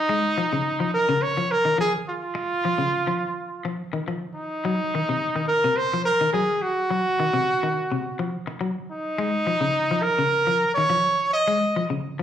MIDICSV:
0, 0, Header, 1, 4, 480
1, 0, Start_track
1, 0, Tempo, 570342
1, 66, Time_signature, 4, 2, 24, 8
1, 10292, End_track
2, 0, Start_track
2, 0, Title_t, "Trumpet"
2, 0, Program_c, 0, 56
2, 0, Note_on_c, 0, 63, 99
2, 758, Note_off_c, 0, 63, 0
2, 790, Note_on_c, 0, 70, 100
2, 1027, Note_on_c, 0, 73, 108
2, 1040, Note_off_c, 0, 70, 0
2, 1274, Note_on_c, 0, 70, 102
2, 1287, Note_off_c, 0, 73, 0
2, 1510, Note_off_c, 0, 70, 0
2, 1517, Note_on_c, 0, 68, 99
2, 1623, Note_off_c, 0, 68, 0
2, 1762, Note_on_c, 0, 65, 104
2, 3160, Note_off_c, 0, 65, 0
2, 3660, Note_on_c, 0, 63, 92
2, 4589, Note_off_c, 0, 63, 0
2, 4610, Note_on_c, 0, 70, 98
2, 4853, Note_on_c, 0, 72, 105
2, 4866, Note_off_c, 0, 70, 0
2, 5087, Note_off_c, 0, 72, 0
2, 5092, Note_on_c, 0, 70, 101
2, 5322, Note_off_c, 0, 70, 0
2, 5326, Note_on_c, 0, 68, 98
2, 5570, Note_on_c, 0, 66, 99
2, 5583, Note_off_c, 0, 68, 0
2, 7019, Note_off_c, 0, 66, 0
2, 7503, Note_on_c, 0, 63, 98
2, 8433, Note_on_c, 0, 70, 101
2, 8446, Note_off_c, 0, 63, 0
2, 9034, Note_off_c, 0, 70, 0
2, 9039, Note_on_c, 0, 73, 105
2, 9503, Note_off_c, 0, 73, 0
2, 9535, Note_on_c, 0, 75, 104
2, 9991, Note_off_c, 0, 75, 0
2, 10292, End_track
3, 0, Start_track
3, 0, Title_t, "Clean electric guitar"
3, 0, Program_c, 1, 27
3, 78, Note_on_c, 1, 56, 84
3, 208, Note_off_c, 1, 56, 0
3, 317, Note_on_c, 1, 53, 80
3, 383, Note_off_c, 1, 53, 0
3, 444, Note_on_c, 1, 49, 66
3, 573, Note_off_c, 1, 49, 0
3, 674, Note_on_c, 1, 53, 80
3, 806, Note_off_c, 1, 53, 0
3, 915, Note_on_c, 1, 49, 77
3, 1047, Note_off_c, 1, 49, 0
3, 1156, Note_on_c, 1, 53, 76
3, 1288, Note_off_c, 1, 53, 0
3, 1389, Note_on_c, 1, 51, 82
3, 1454, Note_off_c, 1, 51, 0
3, 1500, Note_on_c, 1, 53, 78
3, 1635, Note_off_c, 1, 53, 0
3, 2230, Note_on_c, 1, 53, 76
3, 2298, Note_off_c, 1, 53, 0
3, 2342, Note_on_c, 1, 49, 71
3, 2477, Note_off_c, 1, 49, 0
3, 2586, Note_on_c, 1, 53, 78
3, 2720, Note_off_c, 1, 53, 0
3, 3072, Note_on_c, 1, 53, 68
3, 3204, Note_off_c, 1, 53, 0
3, 3309, Note_on_c, 1, 51, 71
3, 3373, Note_off_c, 1, 51, 0
3, 3432, Note_on_c, 1, 53, 73
3, 3563, Note_off_c, 1, 53, 0
3, 3913, Note_on_c, 1, 54, 83
3, 4044, Note_off_c, 1, 54, 0
3, 4165, Note_on_c, 1, 51, 72
3, 4228, Note_off_c, 1, 51, 0
3, 4284, Note_on_c, 1, 48, 68
3, 4413, Note_off_c, 1, 48, 0
3, 4508, Note_on_c, 1, 51, 74
3, 4642, Note_off_c, 1, 51, 0
3, 4749, Note_on_c, 1, 48, 73
3, 4882, Note_off_c, 1, 48, 0
3, 4995, Note_on_c, 1, 53, 73
3, 5126, Note_off_c, 1, 53, 0
3, 5226, Note_on_c, 1, 51, 76
3, 5291, Note_off_c, 1, 51, 0
3, 5333, Note_on_c, 1, 54, 77
3, 5470, Note_off_c, 1, 54, 0
3, 5812, Note_on_c, 1, 54, 83
3, 5949, Note_off_c, 1, 54, 0
3, 6057, Note_on_c, 1, 51, 75
3, 6128, Note_off_c, 1, 51, 0
3, 6173, Note_on_c, 1, 48, 69
3, 6311, Note_off_c, 1, 48, 0
3, 6423, Note_on_c, 1, 51, 77
3, 6558, Note_off_c, 1, 51, 0
3, 6662, Note_on_c, 1, 48, 69
3, 6797, Note_off_c, 1, 48, 0
3, 6895, Note_on_c, 1, 53, 71
3, 7032, Note_off_c, 1, 53, 0
3, 7244, Note_on_c, 1, 54, 82
3, 7383, Note_off_c, 1, 54, 0
3, 7730, Note_on_c, 1, 56, 84
3, 7868, Note_off_c, 1, 56, 0
3, 7968, Note_on_c, 1, 53, 71
3, 8042, Note_off_c, 1, 53, 0
3, 8087, Note_on_c, 1, 49, 73
3, 8227, Note_off_c, 1, 49, 0
3, 8341, Note_on_c, 1, 53, 74
3, 8477, Note_off_c, 1, 53, 0
3, 8572, Note_on_c, 1, 49, 74
3, 8711, Note_off_c, 1, 49, 0
3, 8811, Note_on_c, 1, 53, 68
3, 8950, Note_off_c, 1, 53, 0
3, 9069, Note_on_c, 1, 51, 78
3, 9134, Note_off_c, 1, 51, 0
3, 9171, Note_on_c, 1, 53, 82
3, 9309, Note_off_c, 1, 53, 0
3, 9658, Note_on_c, 1, 56, 82
3, 9794, Note_off_c, 1, 56, 0
3, 9901, Note_on_c, 1, 53, 73
3, 9972, Note_off_c, 1, 53, 0
3, 10016, Note_on_c, 1, 49, 69
3, 10154, Note_off_c, 1, 49, 0
3, 10263, Note_on_c, 1, 53, 71
3, 10292, Note_off_c, 1, 53, 0
3, 10292, End_track
4, 0, Start_track
4, 0, Title_t, "Muted clean electric guitar strokes"
4, 1977, Note_on_c, 9, 29, 84
4, 2062, Note_off_c, 9, 29, 0
4, 7132, Note_on_c, 9, 29, 77
4, 7216, Note_off_c, 9, 29, 0
4, 10292, End_track
0, 0, End_of_file